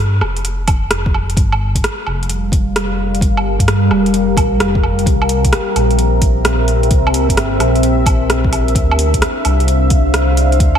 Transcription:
Already playing: detuned saw bass G2
0.21 detuned saw bass F1, cross-stick, low woodblock
0.37 closed hi-hat
0.45 closed hi-hat
0.68 kick, closed hi-hat, low woodblock
0.91 cross-stick, closed hi-hat
1.06 kick
1.14 low woodblock
1.30 closed hi-hat
1.37 detuned saw bass G1, ambient pad G3 G4 A#4 F5, kick, closed hi-hat
1.52 low woodblock
1.75 kick, closed hi-hat
1.84 cross-stick, closed hi-hat
2.07 detuned saw bass F1, low woodblock
2.23 closed hi-hat
2.29 closed hi-hat
2.52 kick, closed hi-hat
2.76 cross-stick, closed hi-hat
3.15 closed hi-hat
3.21 detuned saw bass G1, kick, closed hi-hat
3.37 low woodblock
3.60 detuned saw bass G2, kick, closed hi-hat
3.68 cross-stick, closed hi-hat
3.91 detuned saw bass F1, cross-stick, low woodblock
4.06 closed hi-hat
4.14 closed hi-hat
4.37 detuned saw bass A#1, kick, closed hi-hat, low woodblock
4.60 detuned saw bass F1, cross-stick, closed hi-hat
4.75 kick
4.83 low woodblock
4.99 closed hi-hat
5.06 detuned saw bass C2, ambient pad C4 E5, kick, closed hi-hat
5.22 low woodblock
5.29 open hi-hat
5.45 kick, closed hi-hat
5.53 cross-stick, closed hi-hat
5.75 detuned saw bass A#1, open hi-hat, low woodblock
5.91 closed hi-hat
5.99 closed hi-hat
6.22 kick, open hi-hat
6.45 cross-stick, closed hi-hat
6.68 open hi-hat
6.83 closed hi-hat
6.91 detuned saw bass C2, kick, closed hi-hat
7.07 low woodblock
7.14 open hi-hat
7.29 detuned saw bass G1, kick, closed hi-hat
7.37 cross-stick, closed hi-hat
7.60 detuned saw bass A#1, cross-stick, open hi-hat, low woodblock
7.75 closed hi-hat
7.83 closed hi-hat
8.06 kick, open hi-hat, low woodblock
8.30 cross-stick, closed hi-hat
8.44 kick
8.53 open hi-hat, low woodblock
8.68 closed hi-hat
8.75 detuned saw bass D2, ambient pad D4 C5 F5, kick, closed hi-hat
8.91 low woodblock
8.99 open hi-hat
9.14 kick, closed hi-hat
9.22 cross-stick, closed hi-hat
9.45 detuned saw bass C2, open hi-hat, low woodblock
9.60 closed hi-hat
9.68 closed hi-hat
9.90 kick, open hi-hat
10.14 cross-stick, closed hi-hat
10.37 open hi-hat
10.52 closed hi-hat
10.60 detuned saw bass D2, kick, closed hi-hat
10.75 low woodblock

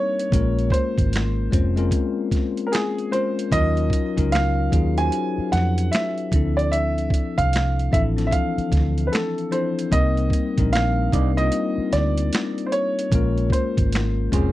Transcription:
Already playing: tine electric piano G3 A#3 C4 D4 D#4 A#4, grand piano C#5
0.19 closed hi-hat
0.32 fingered electric bass A#1, tine electric piano G#3 A#3 C#4 F4 A#4, kick, closed hi-hat
0.59 closed hi-hat
0.70 grand piano C5, kick, closed hi-hat
0.98 fingered electric bass G#1, kick, closed hi-hat
1.13 finger snap, snare, closed hi-hat
1.51 fingered electric bass F1, tine electric piano G#3 C4 C#4 F4 C5, kick, closed hi-hat
1.76 tine electric piano G#3 C4 C#4 F4 A#4, closed hi-hat
1.91 kick, closed hi-hat
2.31 kick, snare, closed hi-hat
2.57 closed hi-hat
2.67 grand piano A#4
2.72 grand piano G#4, finger snap, snare, closed hi-hat
2.98 closed hi-hat
3.12 tine electric piano G#3 C#4 F4 A#4 C5, grand piano C5, closed hi-hat
3.39 closed hi-hat
3.52 fingered electric bass D#2, tine electric piano F#3 C#4 D#4 F4 A#4, grand piano D#5, kick, closed hi-hat
3.77 closed hi-hat
3.90 kick, closed hi-hat
4.17 fingered electric bass C#2, tine electric piano F#3 C#4 D#4 F4 A#4, kick, closed hi-hat
4.32 grand piano F5, finger snap, snare, closed hi-hat
4.71 fingered electric bass D#2, tine electric piano F#3 C#4 D#4 F4 G#4, kick, closed hi-hat
4.98 tine electric piano C#4 D#4 F#4 C5, grand piano G#5, closed hi-hat
5.12 closed hi-hat
5.38 muted fingered electric bass stroke
5.52 fingered electric bass F2, grand piano F#5, snare, closed hi-hat
5.78 closed hi-hat
5.92 grand piano E5, snare, closed hi-hat
5.96 finger snap
6.18 closed hi-hat
6.32 fingered electric bass D2, tine electric piano F3 C4 D4 E4, kick, closed hi-hat
6.36 tine electric piano A4
6.57 grand piano D5, closed hi-hat
6.72 grand piano E5, closed hi-hat
6.98 closed hi-hat
7.10 kick, closed hi-hat
7.38 fingered electric bass C2, grand piano F5, kick, closed hi-hat
7.53 finger snap, snare, closed hi-hat
7.79 closed hi-hat
7.91 fingered electric bass A1, tine electric piano F3 C4 D4 E4 A4, grand piano E5, kick, closed hi-hat
8.16 tine electric piano E3 F3 C4 D4 A4, snare, closed hi-hat
8.27 grand piano E5
8.31 grand piano F5, kick, closed hi-hat
8.58 muted fingered electric bass stroke, closed hi-hat
8.72 fingered electric bass D2, kick, snare, closed hi-hat
8.98 closed hi-hat
9.07 grand piano B4
9.12 grand piano A4, finger snap, snare, closed hi-hat
9.38 closed hi-hat
9.51 tine electric piano F3 C4 D4 E4 A4, grand piano C5, closed hi-hat
9.79 closed hi-hat
9.91 fingered electric bass C2, tine electric piano G3 A#3 C4 D#4 A#4, grand piano D#5, kick, closed hi-hat
10.17 closed hi-hat
10.30 kick, closed hi-hat
10.57 fingered electric bass A#1, tine electric piano G3 C4 D4 D#4 A#4, kick, closed hi-hat
10.73 grand piano F5, finger snap, snare, closed hi-hat
11.12 fingered electric bass C2, tine electric piano G3 C4 D4 D#4 A#4, clean electric guitar D#4 A#4 D5, kick, closed hi-hat
11.37 tine electric piano G3 A#3 C4 D#4 F4, grand piano D#5, closed hi-hat
11.52 closed hi-hat
11.78 muted fingered electric bass stroke
11.93 fingered electric bass D2, grand piano D5, snare, closed hi-hat
12.17 closed hi-hat
12.33 finger snap, snare, closed hi-hat
12.58 closed hi-hat
12.66 grand piano C5
12.72 grand piano C#5, closed hi-hat
12.99 closed hi-hat
13.12 fingered electric bass A#1, tine electric piano G#3 A#3 C#4 F4 A#4, kick, closed hi-hat
13.38 closed hi-hat
13.50 grand piano C5, kick, closed hi-hat
13.77 fingered electric bass G#1, kick, closed hi-hat
13.92 finger snap, snare, closed hi-hat
14.32 fingered electric bass F1, tine electric piano G#3 C4 C#4 F4 G#4, clean electric guitar C#4 G#4 C5, kick, closed hi-hat

